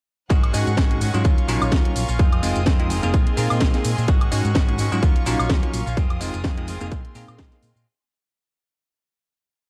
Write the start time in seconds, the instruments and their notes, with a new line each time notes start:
0.30 fingered electric bass G#1, clean electric guitar D#3 G#3 C#4 F#4, violin section G#4 F#5 C#6, kick, closed hi-hat, maracas
0.43 closed hi-hat, high woodblock
0.53 fingered electric bass G#2, clean electric guitar D#3 G#3 C#4 F#4, tine electric piano G#3 C#4 D#4 F#4, open hi-hat, maracas
0.67 fingered electric bass G#2, closed hi-hat, maracas
0.77 fingered electric bass G#1, clean electric guitar D#3 G#3 C#4 F#4, kick, snare, closed hi-hat, maracas
0.90 tine electric piano G#3 C#4 D#4 F#4, closed hi-hat
1.01 fingered electric bass G#2, clean electric guitar D#3 G#3 C#4 F#4, open hi-hat, maracas
1.14 fingered electric bass G#2, tine electric piano F#3 C#4 D#4 F4, clean electric guitar G#3 C#4 F#4, closed hi-hat, maracas
1.24 fingered electric bass D#2, clean electric guitar F#3 A#3 C#4 F4, violin section F5 C#6, kick, closed hi-hat, maracas
1.37 clean electric guitar A#3 C#4 F4, closed hi-hat
1.48 fingered electric bass A#1, clean electric guitar F#3 A#3 C#4 F4, tine electric piano F#3 C#4 D#4 F4, open hi-hat, maracas
1.61 fingered electric bass A#1, high woodblock, maracas
1.72 clean electric guitar F4, kick, snare, closed hi-hat, maracas
1.85 tine electric piano F#3 C#4 D#4 F4, closed hi-hat
1.96 fingered electric bass A#1, open hi-hat, maracas
2.08 fingered electric bass A#1, clean electric guitar A#3 C#4 F4, maracas
2.19 fingered electric bass F2, clean electric guitar D#3 G#3 C4 F4, violin section G#4 D#6, kick, closed hi-hat, maracas
2.33 closed hi-hat, high woodblock
2.42 fingered electric bass F1, clean electric guitar D#3 G#3 C4 F4, tine electric piano G#3 C4 D#4 F4, open hi-hat, maracas
2.55 fingered electric bass F1, closed hi-hat, maracas
2.66 fingered electric bass F2, clean electric guitar D#3 G#3 C4 F4, kick, snare, closed hi-hat, maracas
2.79 tine electric piano G#3 C4 D#4 F4, closed hi-hat
2.89 fingered electric bass F1, clean electric guitar D#3 G#3 C4 F4, open hi-hat, maracas
3.02 fingered electric bass F1, clean electric guitar G#3 C4 F4, tine electric piano A#3 C4 D#4 G#4, closed hi-hat, maracas
3.13 clean electric guitar D#3 G#3 C4 F4, violin section D#5 C6, kick, closed hi-hat, maracas
3.26 clean electric guitar G#3 C4 F4, closed hi-hat
3.36 fingered electric bass A#2, clean electric guitar D#3 G#3 C4 F4, tine electric piano A#3 C4 D#4 G#4, open hi-hat, maracas
3.50 fingered electric bass A#2, high woodblock, maracas
3.60 fingered electric bass A#1, clean electric guitar D#3 G#3 C4 F4, kick, snare, closed hi-hat, maracas
3.74 tine electric piano A#3 C4 D#4 G#4, snare, closed hi-hat
3.84 fingered electric bass A#2, open hi-hat, maracas
3.97 fingered electric bass A#2, clean electric guitar G#3 C4 F4, maracas
4.07 fingered electric bass G#1, clean electric guitar D#3 G#3 C#4 F#4, violin section F#5 C#6, kick, closed hi-hat, maracas
4.21 closed hi-hat, high woodblock
4.31 fingered electric bass G#2, clean electric guitar D#3 G#3 C#4 F#4, tine electric piano G#3 C#4 D#4 F#4, open hi-hat, maracas
4.45 fingered electric bass G#2, closed hi-hat, maracas
4.55 fingered electric bass G#1, clean electric guitar D#3 G#3 C#4 F#4, kick, snare, closed hi-hat, maracas
4.68 tine electric piano G#3 C#4 D#4 F#4, closed hi-hat
4.78 fingered electric bass G#2, clean electric guitar D#3 G#3 C#4 F#4, open hi-hat, maracas
4.91 fingered electric bass G#2, tine electric piano F#3 C#4 D#4 F4, clean electric guitar G#3 C#4 F#4, closed hi-hat, maracas
5.02 fingered electric bass D#2, clean electric guitar F#3 A#3 C#4 F4, violin section F5, kick, closed hi-hat, maracas
5.15 clean electric guitar A#3 C#4 F4, closed hi-hat
5.26 fingered electric bass A#1, clean electric guitar F#3 A#3 C#4 F4, tine electric piano F#3 C#4 D#4 F4, open hi-hat, maracas
5.39 fingered electric bass A#1, high woodblock, maracas
5.49 clean electric guitar F4, kick, snare, closed hi-hat, maracas
5.62 tine electric piano F#3 C#4 D#4 F4, closed hi-hat
5.74 fingered electric bass A#1, open hi-hat, maracas
5.86 fingered electric bass A#1, clean electric guitar A#3 C#4 F4, maracas
5.97 clean electric guitar D#3 G#3 C4 F4, violin section G#4 D#6, kick, closed hi-hat, maracas
6.10 closed hi-hat, high woodblock
6.20 fingered electric bass F1, clean electric guitar D#3 G#3 C4 F4, tine electric piano G#3 C4 D#4 F4, open hi-hat, maracas
6.34 fingered electric bass F1, closed hi-hat, maracas
6.44 fingered electric bass F2, clean electric guitar D#3 G#3 C4 F4, kick, snare, closed hi-hat, maracas
6.57 tine electric piano G#3 C4 D#4 F4, closed hi-hat
6.67 fingered electric bass F1, clean electric guitar D#3 G#3 C4 F4, open hi-hat, maracas
6.81 fingered electric bass F1, clean electric guitar G#3 C4 F4, tine electric piano A#3 C4 D#4 G#4, closed hi-hat, maracas
6.91 clean electric guitar D#3 C4 F4, violin section D#5 C6, kick, closed hi-hat, maracas
7.04 clean electric guitar G#3 C4 F4, closed hi-hat
7.15 fingered electric bass A#2, clean electric guitar D#3 G#3 C4 F4, tine electric piano A#3 C4 D#4 G#4, open hi-hat, maracas
7.28 fingered electric bass A#2, closed hi-hat, high woodblock, maracas
7.38 clean electric guitar D#3 G#3 C4 F4, kick, snare, closed hi-hat, maracas
7.52 tine electric piano A#3 C4 D#4 G#4, snare, closed hi-hat
7.63 fingered electric bass A#2, open hi-hat, maracas
7.75 fingered electric bass A#2, clean electric guitar G#3 C4 F4, maracas